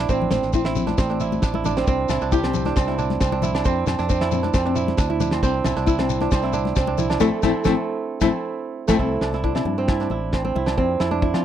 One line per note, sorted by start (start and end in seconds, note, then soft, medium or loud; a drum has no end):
0.00 0.86 D4 medium
0.00 0.65 E4 medium
0.09 0.30 A1 medium
0.09 0.31 C4 medium
0.09 0.29 C4 medium
0.09 kick medium
0.09 shekere medium
0.22 low conga medium
0.31 0.42 A1 medium
0.31 0.53 C4 medium
0.31 snare medium
0.31 high conga medium
0.31 shekere medium
0.42 0.94 A1 medium
0.42 snare soft
0.42 shekere soft
0.53 0.98 C4 medium
0.53 0.64 E4 medium
0.53 kick medium
0.53 shekere medium
0.65 0.75 C4 medium
0.65 1.20 E4 medium
0.65 snare medium
0.76 0.86 C4 medium
0.76 low conga medium
0.76 shekere medium
0.87 1.09 D4 medium
0.87 1.07 D4 medium
0.87 snare soft
0.87 high conga medium
0.87 shekere soft
0.98 1.39 A1 loud
0.98 1.76 C4 medium
0.98 kick loud
0.98 snare medium
0.98 shekere medium
1.10 1.29 C4 medium
1.10 1.42 D4 medium
1.20 1.54 E4 medium
1.20 shekere medium
1.32 high conga medium
1.32 shekere soft
1.42 1.84 A1 medium
1.42 1.65 D4 medium
1.42 kick medium
1.42 snare medium
1.42 shekere medium
1.54 2.10 E4 medium
1.54 high conga medium
1.64 2.21 D4 medium
1.64 snare soft
1.64 high conga medium
1.64 low conga medium
1.64 shekere loud
1.77 1.87 C4 medium
1.77 snare medium
1.77 shekere soft
1.87 2.08 C2 medium
1.87 2.43 C4 loud
1.87 2.06 C4 medium
1.87 kick loud
1.87 shekere medium
2.09 2.20 C2 medium
2.09 2.87 E4 medium
2.09 snare medium
2.09 low agogo medium
2.09 shekere loud
2.21 2.72 C2 medium
2.21 2.65 D4 medium
2.21 shekere soft
2.32 2.42 E4 medium
2.32 3.73 G4 medium
2.32 kick medium
2.32 shekere medium
2.44 2.75 C4 medium
2.44 2.53 C4 medium
2.44 snare medium
2.44 low agogo medium
2.53 2.64 C4 medium
2.53 low conga medium
2.53 shekere medium
2.65 2.98 D4 medium
2.65 2.85 E4 medium
2.65 snare soft
2.65 high conga medium
2.76 3.17 C2 loud
2.76 3.20 C4 medium
2.76 kick loud
2.76 snare medium
2.76 low agogo medium
2.76 shekere medium
2.88 3.07 C4 medium
2.88 3.42 E4 medium
2.88 snare soft
2.98 3.32 D4 medium
2.98 shekere medium
3.10 snare soft
3.10 high conga medium
3.20 3.62 C2 loud
3.20 3.65 C4 medium
3.20 kick medium
3.20 snare medium
3.20 low agogo medium
3.20 shekere medium
3.32 3.54 D4 medium
3.32 high conga medium
3.42 4.21 E4 medium
3.42 high conga medium
3.42 low conga medium
3.42 shekere loud
3.54 3.98 D4 medium
3.54 snare medium
3.54 low agogo medium
3.54 shekere soft
3.65 3.86 F2 medium
3.65 3.87 C4 loud
3.65 3.85 C4 medium
3.65 kick loud
3.65 shekere medium
3.87 3.98 F2 medium
3.87 4.09 C4 medium
3.87 snare medium
3.87 low agogo medium
3.87 shekere medium
3.99 4.50 F2 medium
3.99 4.42 D4 medium
3.99 snare soft
3.99 shekere soft
4.09 4.53 C4 medium
4.09 4.20 D4 medium
4.09 kick medium
4.09 shekere medium
4.21 4.75 E4 medium
4.21 snare medium
4.21 low agogo medium
4.31 4.42 C4 medium
4.31 low conga medium
4.31 shekere medium
4.43 4.65 D4 medium
4.43 4.63 D4 medium
4.43 snare soft
4.43 high conga medium
4.54 4.95 F2 loud
4.54 5.32 C4 loud
4.54 kick loud
4.54 snare medium
4.54 low agogo medium
4.54 shekere medium
4.65 4.85 C4 medium
4.65 4.97 D4 medium
4.75 5.09 E4 medium
4.75 shekere loud
4.88 snare soft
4.88 high conga medium
4.97 5.39 D2 medium
4.97 5.20 D4 medium
4.97 kick medium
4.97 snare medium
4.97 low agogo medium
4.97 shekere medium
5.10 5.65 E4 medium
5.10 high conga medium
5.20 5.76 D4 medium
5.20 snare soft
5.20 high conga medium
5.20 low conga medium
5.20 shekere loud
5.31 5.43 C4 medium
5.31 snare medium
5.31 low agogo medium
5.31 shekere soft
5.42 5.63 C2 loud
5.42 5.98 C4 loud
5.42 5.62 C4 medium
5.42 kick medium
5.42 shekere medium
5.64 5.76 C2 medium
5.64 5.87 E4 medium
5.64 snare medium
5.64 low agogo medium
5.64 shekere loud
5.76 6.28 C2 medium
5.76 6.21 D4 medium
5.76 snare soft
5.76 shekere soft
5.86 5.97 E4 medium
5.86 6.43 E4 medium
5.86 kick medium
5.86 shekere medium
5.99 6.31 C4 medium
5.99 6.08 C4 medium
5.99 snare medium
5.99 low agogo medium
6.09 6.19 C4 medium
6.09 shekere loud
6.21 6.53 D4 medium
6.21 6.40 E4 medium
6.21 snare soft
6.21 high conga medium
6.31 6.73 C2 loud
6.31 6.76 C4 medium
6.31 kick loud
6.31 snare medium
6.31 low agogo medium
6.31 shekere medium
6.43 6.62 C4 medium
6.43 6.98 E4 medium
6.43 snare soft
6.53 6.87 D4 medium
6.53 shekere loud
6.65 snare soft
6.65 high conga medium
6.76 7.17 C2 loud
6.76 7.21 C4 medium
6.76 kick loud
6.76 snare medium
6.76 low agogo medium
6.76 shekere medium
6.87 7.09 D4 medium
6.87 high conga medium
6.98 7.21 E4 medium
6.98 low conga medium
6.98 shekere loud
7.10 8.78 D4 medium
7.10 snare medium
7.10 low agogo medium
7.10 shekere soft
7.20 7.28 A3 loud
7.20 7.42 A3 loud
7.20 7.28 C4 medium
7.20 7.43 C4 loud
7.20 7.28 E4 loud
7.20 7.43 E4 medium
7.20 kick medium
7.20 snare medium
7.20 low conga medium
7.20 low agogo loud
7.20 shekere loud
7.43 7.52 A1 loud
7.43 7.64 A3 loud
7.43 7.51 A3 loud
7.43 7.65 C4 medium
7.43 7.51 C4 loud
7.43 7.66 E4 loud
7.43 7.51 E4 loud
7.43 kick medium
7.43 snare medium
7.43 low conga loud
7.43 low agogo loud
7.43 shekere medium
7.64 7.74 A1 loud
7.64 8.21 A3 loud
7.64 7.74 A3 medium
7.64 8.21 C4 loud
7.64 7.74 C4 loud
7.64 8.22 E4 medium
7.64 7.74 E4 loud
7.64 kick medium
7.64 snare medium
7.64 low conga loud
7.64 low agogo loud
7.64 shekere loud
8.21 8.29 A1 loud
8.21 8.87 A3 medium
8.21 8.28 A3 loud
8.21 8.88 C4 medium
8.21 8.29 C4 loud
8.21 8.28 E4 loud
8.21 8.89 E4 medium
8.21 kick medium
8.21 snare medium
8.21 low conga loud
8.21 low agogo loud
8.21 shekere loud
8.88 8.96 A1 medium
8.88 10.88 A3 loud
8.88 8.96 A3 medium
8.88 9.78 C4 medium
8.88 8.96 C4 loud
8.88 8.99 E4 loud
8.88 8.96 E4 loud
8.88 kick medium
8.88 snare medium
8.88 low conga loud
8.88 low agogo medium
8.88 shekere loud
8.99 9.20 C2 loud
8.99 9.18 C4 medium
8.99 9.34 E4 medium
8.99 kick medium
9.21 9.52 C2 medium
9.21 9.43 D4 medium
9.21 snare medium
9.21 low agogo medium
9.33 9.55 E4 medium
9.33 snare soft
9.33 high conga medium
9.44 10.00 D4 medium
9.44 9.54 E4 medium
9.44 kick medium
9.55 9.64 C3 medium
9.55 9.64 C4 medium
9.55 9.88 E4 medium
9.55 snare medium
9.55 low agogo medium
9.65 10.06 G2 medium
9.65 9.76 C4 medium
9.65 low conga medium
9.78 10.33 C4 medium
9.78 9.96 D4 medium
9.88 10.10 E4 medium
9.88 kick loud
9.88 snare medium
9.88 low agogo medium
10.00 10.19 C4 medium
10.00 10.66 D4 medium
10.00 snare soft
10.10 10.51 A1 medium
10.10 10.55 E4 medium
10.10 high conga medium
10.33 10.44 C4 medium
10.33 kick medium
10.33 snare medium
10.33 low agogo medium
10.44 10.77 C4 medium
10.44 high conga medium
10.55 10.76 C2 medium
10.55 11.00 E4 medium
10.55 low conga medium
10.66 11.11 D4 medium
10.66 snare medium
10.66 low agogo medium
10.77 10.98 F2 medium
10.77 11.45 C4 medium
10.77 10.96 C4 medium
10.77 kick medium
11.00 11.31 F2 medium
11.00 11.22 E4 medium
11.00 snare medium
11.00 low agogo medium
11.11 11.45 D4 medium
11.11 high conga medium
11.22 11.32 D4 medium
11.22 11.40 E4 medium
11.22 kick medium
11.34 11.42 F3 medium
11.34 11.43 C4 medium
11.34 11.45 F4 medium
11.34 snare medium
11.34 low agogo medium